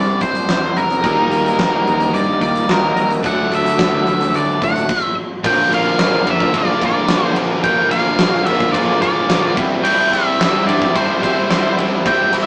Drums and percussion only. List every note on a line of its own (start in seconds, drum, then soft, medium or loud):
0.21 kick medium
0.21 snare soft
0.21 closed hi-hat medium
0.35 closed hi-hat medium
0.49 snare loud
0.49 closed hi-hat medium
0.76 closed hi-hat medium
0.90 closed hi-hat medium
1.04 kick loud
1.04 closed hi-hat medium
1.31 closed hi-hat medium
1.46 closed hi-hat medium
1.59 kick medium
1.59 snare loud
1.59 closed hi-hat medium
1.87 closed hi-hat medium
2.00 closed hi-hat medium
2.14 closed hi-hat medium
2.41 kick medium
2.41 closed hi-hat medium
2.55 closed hi-hat medium
2.69 snare loud
2.69 closed hi-hat medium
2.97 closed hi-hat medium
3.11 closed hi-hat medium
3.24 kick loud
3.24 closed hi-hat medium
3.52 closed hi-hat medium
3.66 closed hi-hat medium
3.79 kick medium
3.79 snare loud
3.79 closed hi-hat medium
4.07 closed hi-hat medium
4.21 closed hi-hat medium
4.34 closed hi-hat medium
4.62 kick medium
4.62 snare soft
4.62 closed hi-hat medium
4.76 closed hi-hat medium
4.89 kick loud
4.89 crash medium
5.44 kick loud
5.44 crash loud
5.72 ride medium
5.99 snare loud
5.99 ride loud
6.27 ride medium
6.40 kick medium
6.40 snare soft
6.54 kick medium
6.54 ride loud
6.81 kick medium
6.81 ride medium
7.09 snare loud
7.09 ride loud
7.36 ride medium
7.64 kick loud
7.64 ride loud
7.91 ride medium
8.19 snare loud
8.19 ride loud
8.46 ride medium
8.60 kick medium
8.60 snare soft
8.74 kick medium
8.74 ride loud
9.02 kick medium
9.02 ride medium
9.30 snare loud
9.30 ride loud
9.57 kick loud
9.57 ride medium
9.85 crash loud
10.13 ride medium
10.41 snare loud
10.41 ride loud
10.69 ride medium
10.82 kick medium
10.82 snare soft
10.95 kick loud
10.95 ride loud
11.23 kick medium
11.23 ride medium
11.50 snare loud
11.50 ride loud
11.78 ride medium
12.06 kick loud
12.06 ride loud
12.33 ride medium